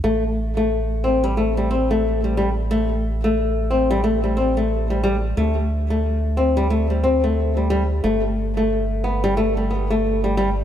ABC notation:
X:1
M:4/4
L:1/16
Q:"Swing 16ths" 1/4=90
K:Am
V:1 name="Nylon-string guitar"
A, z2 A,3 C G, A, G, C A,2 G, G, z | A, z2 A,3 C G, A, G, C A,2 G, G, z | A, z2 A,3 C G, A, G, C A,2 G, G, z | A, z2 A,3 B, G, A, G, B, A,2 G, G, z |]
V:2 name="Analog synth bass" clef=bass
A,,,16- | A,,,16 | D,,16 | G,,,16 |]